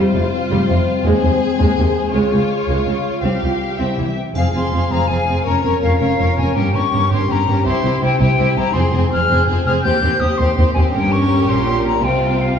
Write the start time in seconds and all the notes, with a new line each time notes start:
Already playing: G3 C4 F4 C5
0.14 F1 F2 C3
0.51 F1 F2 G3
0.68 F1 F2 C3
1.04 D#2 G#3 G#4 C5
1.23 D#2 C3
1.59 D#2 G#3
1.78 D#2 C3
2.11 C#2 G#3 F4 C#5
2.31 C#2 C#3
2.67 C#2 G#3
2.85 C#2 C#3
3.22 C2 G3 C4 G4 F5
3.42 C2 F3
3.77 C2 C4 E4 E5
3.98 C2 E3
4.17 G5
4.34 F1 F2 C4 G#4 F5, triangle
4.53 F1 F2 C4 G#4 F5
4.57 C6
4.71 F1 F2 C4 G#4 F5
4.89 F1 F2 C4 G#4 F5 A#5
5.07 F1 F2 C4 G#4 F5 G#5
5.25 F1 C4 G#4 F5
5.29 F2
5.44 F1 F2 C#4 A#4 C#5 A#5
5.62 F1 F2 C#4 A#4 C#5
5.80 F1 F2 C#4 A#4 C#5 F5
5.99 F1 F2 C#4 A#4 C#5 F5
6.18 F1 F2 C#4 A#4 C#5
6.37 F1 F2 C#4 A#4 C#5 G#5
6.55 G1 G2 C#4 G4 A#4 G5
6.73 G1 G2 C#4 G4 A#4 C#6
6.91 G1 G2 C#4 G4 A#4
7.10 G1 G2 C#4 G4 A#4 C6
7.28 G1 G2 C#4 G4 A#4 A#5
7.46 G1 G2 C#4 G4 A#4
7.64 C2 C3 E4 G4 C5 C6
7.80 C2 C3 E4 G4 C5
8.00 C2 C3 E4 G4 C5
8.04 G5
8.18 C2 C3 E4 G4 C5 G5
8.37 C2 C3 E4 G4 C5
8.55 C2 C3 E4 G4 C5 A#5
8.73 F1 F2 C4 G#4 C5 C6
8.92 F1 F2 C4 G#4 C5
9.10 F1 F2 C4 G#4 C5 F6
9.28 F1 F2 C4 G#4 C5
9.47 F1 F2 C4 G#4 C5
9.64 F1 F2 C4 G#4 C5 F6
9.83 D#2 C4 G4 C5 G6
10.02 D#2 C4 G4 C5
10.20 D#2 C4 G4 C5 D#6
10.38 D#2 C4 G4 C5 C6
10.56 D#2 C4 G4 C5
10.74 D#2 C4 G4 C5 G#5
10.93 G1 G2 C#4 G4 A#4 G5
11.12 C#6
11.48 A#1 A#2 C6
11.86 A#5
12.01 C2 C3 C4 F4 C5 G5
12.41 F5